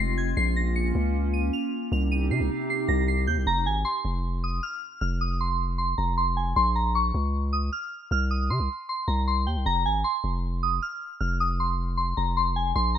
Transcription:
0.00 0.35 F1 loud
0.00 0.34 G#3 medium
0.00 0.33 C4 medium
0.00 1.88 F4 medium
0.00 0.13 C7 medium
0.18 0.33 G#6 medium
0.37 0.93 A#1 loud
0.37 1.90 A#3 medium
0.37 1.90 C#4 medium
0.37 0.52 C7 loud
0.56 0.71 A#6 medium
0.76 1.30 C#7 medium
0.95 1.51 C#2 loud
1.33 1.49 D#7 medium
1.53 1.90 F7 medium
1.92 2.32 C2 loud
1.92 3.45 C3 medium
1.92 3.45 C4 medium
1.92 3.45 D#4 medium
1.92 3.45 G4 medium
1.92 2.07 F7 medium
2.12 2.26 D#7 medium
2.31 2.42 C3 loud
2.31 2.67 C7 medium
2.40 2.49 C2 loud
2.70 2.85 C7 medium
2.88 3.29 C2 loud
2.88 3.03 A#6 medium
3.08 3.23 C7 medium
3.27 3.39 D#2 loud
3.27 3.42 G6 medium
3.37 3.46 C2 loud
3.47 3.67 F1 loud
3.47 3.62 A#5 loud
3.66 3.84 G#1 loud
3.66 3.81 G#5 medium
3.85 4.40 C6 medium
4.05 4.60 F1 loud
4.44 4.59 D#6 medium
4.63 4.99 F6 medium
5.01 5.94 F1 loud
5.01 5.16 F6 medium
5.21 5.36 D#6 medium
5.41 5.77 C6 medium
5.78 5.94 C6 medium
5.98 6.54 F1 loud
5.98 6.13 A#5 medium
6.18 6.33 C6 medium
6.37 6.52 G#5 medium
6.56 7.12 A#1 loud
6.56 6.71 C6 loud
6.76 6.91 A#5 medium
6.95 7.50 C#6 medium
7.14 7.70 C#2 loud
7.53 7.68 D#6 medium
7.73 8.09 F6 medium
8.11 8.51 C2 loud
8.11 8.27 F6 medium
8.31 8.46 D#6 medium
8.50 8.61 C3 loud
8.50 8.87 C6 medium
8.60 8.69 C2 loud
8.89 9.04 C6 medium
9.08 9.48 C2 loud
9.08 9.23 A#5 medium
9.28 9.43 C6 medium
9.47 9.58 D#2 loud
9.47 9.62 G5 medium
9.56 9.65 C2 loud
9.66 9.87 F1 loud
9.66 9.81 A#5 loud
9.85 10.04 G#1 loud
9.85 10.01 G#5 medium
10.04 10.59 C6 medium
10.24 10.80 F1 loud
10.63 10.78 D#6 medium
10.82 11.19 F6 medium
11.20 12.14 F1 loud
11.20 11.36 F6 medium
11.40 11.55 D#6 medium
11.60 11.96 C6 medium
11.97 12.13 C6 medium
12.17 12.73 F1 loud
12.17 12.32 A#5 medium
12.37 12.52 C6 medium
12.56 12.71 G#5 medium
12.76 12.98 A#1 loud
12.76 12.91 C6 loud
12.95 12.98 A#5 medium

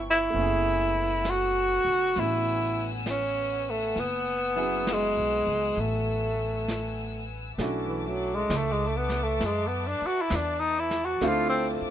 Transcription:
0.00 0.30 G1 medium
0.00 0.32 F3 medium
0.00 0.32 B3 soft
0.00 0.36 D4 soft
0.00 0.38 G4 medium
0.00 7.56 B4 medium
0.00 0.33 C#5 medium
0.00 0.35 C#5 soft
0.00 0.33 G5 medium
0.00 0.33 C#6 medium
0.10 1.32 E4 loud
0.30 3.93 A3 soft
0.30 2.14 B3 soft
0.30 7.55 G#5 medium
0.34 1.80 F#1 medium
0.34 2.15 C#4 soft
0.34 7.55 F#5 medium
0.34 7.56 E6 medium
0.34 brush sweep soft
0.39 3.98 E4 soft
0.39 3.99 G#4 medium
1.25 snare soft
1.25 hi-hat pedal medium
1.30 2.21 F#4 loud
1.85 2.13 F1 medium
2.16 3.92 A1 medium
2.16 3.96 B3 soft
2.16 3.96 C#4 soft
2.16 3.97 F#4 soft
2.16 brush sweep soft
2.16 snare soft
2.20 2.89 E4 medium
3.06 snare soft
3.06 hi-hat pedal soft
3.11 3.72 C#4 medium
3.70 4.01 A3 medium
3.96 5.12 F#1 medium
3.96 4.94 B3 medium
3.96 brush sweep soft
3.96 snare soft
4.56 7.59 F#3 soft
4.56 7.59 B3 soft
4.56 7.59 C#4 soft
4.56 7.59 E4 soft
4.56 7.60 G#4 soft
4.87 snare soft
4.87 hi-hat pedal medium
4.93 5.81 G#3 medium
5.17 5.45 B1 medium
5.47 5.75 C#2 medium
5.77 7.55 A1 medium
5.77 7.30 A3 medium
5.77 brush sweep soft
6.68 snare soft
6.68 hi-hat pedal soft
7.58 8.46 B1 medium
7.58 8.13 A3 soft
7.58 8.14 C#4 soft
7.58 8.14 D4 soft
7.58 8.14 E4 soft
7.58 8.14 F#4 medium
7.58 11.18 B4 medium
7.58 11.17 E5 medium
7.58 11.90 A5 medium
7.58 11.17 D6 medium
7.58 brush sweep soft
7.58 snare soft
7.88 8.09 E3 medium
8.08 8.36 F#3 medium
8.35 8.58 G#3 medium
8.50 9.38 C#2 medium
8.50 snare medium
8.50 hi-hat pedal medium
8.56 8.73 A3 medium
8.72 8.88 G#3 medium
8.87 8.99 A3 medium
8.97 9.25 B3 medium
9.09 snare soft
9.23 9.47 A3 medium
9.40 9.96 F#2 medium
9.40 brush sweep soft
9.40 snare soft
9.45 9.69 G#3 medium
9.67 9.89 B3 medium
9.88 10.08 D4 medium
10.02 muted upright bass stroke soft
10.06 10.23 F#4 medium
10.21 10.37 E4 medium
10.30 11.19 E2 medium
10.30 snare medium
10.30 hi-hat pedal soft
10.35 10.61 D4 medium
10.60 10.81 D#4 medium
10.79 11.07 E4 medium
10.91 snare soft
11.05 11.29 F#4 medium
11.21 11.77 D2 medium
11.21 11.75 A3 medium
11.21 11.76 C4 medium
11.21 11.76 D4 medium
11.21 11.76 E4 medium
11.21 11.76 F4 medium
11.21 11.90 C5 medium
11.21 11.90 D6 medium
11.21 brush sweep medium
11.21 snare soft
11.28 11.49 F4 medium
11.49 11.68 C4 medium
11.81 muted upright bass stroke soft

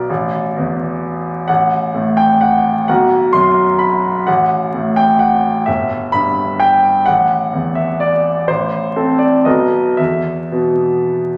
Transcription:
0.00 0.11 B1 soft
0.00 0.11 B2 soft
0.00 1.02 D5 medium
0.10 1.46 A1 soft
0.57 1.50 E2 soft
1.48 2.85 A1 soft
1.48 2.17 F#5 medium
1.94 2.89 A2 soft
2.17 2.41 G5 medium
2.41 2.87 F#5 medium
2.88 4.24 B1 soft
2.88 3.34 F#5 medium
3.33 4.27 F#2 soft
3.33 3.80 C6 medium
3.79 4.26 B5 medium
4.27 5.64 A1 soft
4.27 4.96 F#5 medium
4.74 5.68 A2 soft
4.96 5.21 G5 medium
5.19 5.67 F#5 medium
5.66 7.03 G1 soft
5.66 6.12 E5 medium
6.12 7.07 G2 soft
6.12 6.60 B5 medium
6.59 7.06 G5 medium
7.06 8.45 A1 soft
7.06 7.75 F#5 medium
7.53 8.49 E2 soft
7.75 8.00 E5 soft
8.00 8.48 D5 medium
8.48 9.44 A1 soft
8.48 9.20 C5 medium
8.96 9.42 C4 soft
8.96 9.42 A4 soft
9.19 9.45 D5 soft
9.45 9.97 B1 soft
9.45 9.96 B3 soft
9.45 9.96 A4 soft
9.45 9.98 D#5 soft
9.97 11.37 E2 soft
9.97 11.37 E5 soft
10.52 11.37 B2 soft

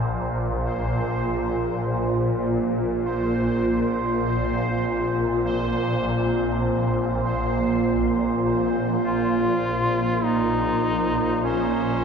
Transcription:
0.00 12.04 A#1 medium
0.00 12.04 A#2 medium
0.00 12.04 A#3 medium
0.00 12.04 F4 medium
0.00 12.04 C5 medium
2.80 10.99 C5 medium
9.05 10.26 F4 loud
10.25 11.43 D#4 loud
10.61 12.04 A#4 medium
11.44 12.04 C#4 loud

